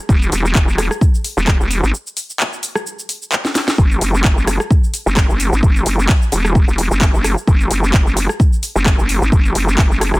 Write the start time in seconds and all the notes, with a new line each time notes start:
0.09 E1, kick, shaker
0.22 shaker
0.32 E1, open hi-hat, shaker
0.45 shaker
0.55 E1, kick, clap, shaker
0.68 shaker
0.78 cross-stick, open hi-hat, shaker
0.91 cross-stick, shaker
1.01 kick, shaker
1.15 shaker
1.24 open hi-hat, shaker
1.37 E1, shaker
1.47 kick, cross-stick, clap, shaker
1.60 E1, shaker
1.71 open hi-hat, shaker
1.83 G#1, shaker
1.94 shaker
2.07 shaker
2.17 open hi-hat, shaker
2.30 shaker
2.40 clap, shaker
2.53 shaker
2.63 open hi-hat, shaker
2.75 cross-stick, shaker
2.87 shaker
2.99 shaker
3.09 open hi-hat, shaker
3.22 shaker
3.32 clap, shaker
3.45 snare, shaker
3.55 snare, open hi-hat, shaker
3.68 snare, shaker
3.78 F#1, kick, shaker
3.91 shaker
4.01 F#1, open hi-hat, shaker
4.14 shaker
4.24 F#1, kick, clap, shaker
4.38 shaker
4.47 cross-stick, open hi-hat, shaker
4.60 cross-stick, shaker
4.71 kick, shaker
4.84 shaker
4.94 open hi-hat, shaker
5.06 F#1, shaker
5.17 kick, cross-stick, clap, shaker
5.29 F#1, shaker
5.40 open hi-hat, shaker
5.52 G#1, shaker
5.63 F#1, kick, shaker
5.76 shaker
5.86 F#1, open hi-hat, shaker
5.99 shaker
6.09 kick, clap, shaker
6.22 shaker
6.32 E1, open hi-hat, shaker
6.45 cross-stick, shaker
6.55 kick, shaker
6.68 E1, shaker
6.78 open hi-hat, shaker
6.91 F#1, shaker
7.01 kick, clap, shaker
7.14 F#1, shaker
7.24 cross-stick, open hi-hat, shaker
7.38 shaker
7.47 F#1, kick, shaker
7.61 shaker
7.71 F#1, open hi-hat, shaker
7.84 shaker
7.94 F#1, kick, clap, shaker
8.07 shaker
8.17 open hi-hat, shaker
8.29 cross-stick, shaker
8.40 kick, shaker
8.53 shaker
8.63 open hi-hat, shaker
8.75 F#1, shaker
8.86 kick, cross-stick, clap, shaker
8.98 F#1, shaker
9.09 open hi-hat, shaker
9.22 G#1, shaker
9.32 F#1, kick, shaker
9.45 shaker
9.55 F#1, open hi-hat, shaker
9.68 shaker
9.78 F#1, kick, clap, shaker
9.91 shaker
10.01 cross-stick, open hi-hat, shaker
10.14 F#1, cross-stick, shaker